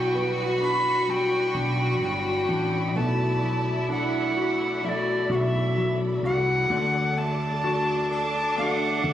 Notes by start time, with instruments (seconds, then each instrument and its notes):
Already playing: fretless electric bass B1, grand piano B2 F#3, steel-string acoustic guitar B3 D4, string section E4 D5 B5, cello section F#4, recorder G5
0.13 steel-string acoustic guitar G3 B3 D4 F#4, grand piano B3
0.60 steel-string acoustic guitar B3 D4 F#4, grand piano D4, recorder B5
1.07 steel-string acoustic guitar B2 G3 B3 D4, grand piano F#3, recorder G5
1.54 fretless electric bass B1, grand piano D4
2.01 fretless electric bass G1, grand piano F#3, steel-string acoustic guitar G3 B3 D4, recorder G5
2.49 fretless electric bass A1, steel-string acoustic guitar B3 D4, grand piano D4
2.88 cello section D#4
2.95 fretless electric bass B1, steel-string acoustic guitar B2 F#3 A3 D4 F#4, grand piano B2, cello section E4, string section A4, recorder A5
3.42 grand piano F#3, steel-string acoustic guitar A3 D4 F#4
3.88 steel-string acoustic guitar F#3 A3 D4 F#4, grand piano D4, recorder F#5
4.36 grand piano F#4
4.83 steel-string acoustic guitar B2 F#3 A3 D4 F#4, grand piano F#3, recorder E5
4.89 recorder D5
5.30 fretless electric bass B1, grand piano F#4, recorder F#5
5.35 recorder E5
5.76 steel-string acoustic guitar F#3 A3 D4 F#4, grand piano F#3
6.23 fretless electric bass C2, steel-string acoustic guitar A3 D4 F#4, grand piano F#4, recorder F#5
6.70 fretless electric bass D2, steel-string acoustic guitar D3 A3 D4 F#4, grand piano D3, cello section D4, string section D6
7.16 grand piano A3, steel-string acoustic guitar A3 D4 F#4, recorder A5
7.63 steel-string acoustic guitar D3 A3 D4 F#4, grand piano F#4
8.10 grand piano A4, recorder A5
8.57 steel-string acoustic guitar D3 A3 D4 F#4, grand piano A3, recorder F#5
9.03 fretless electric bass D2, grand piano A4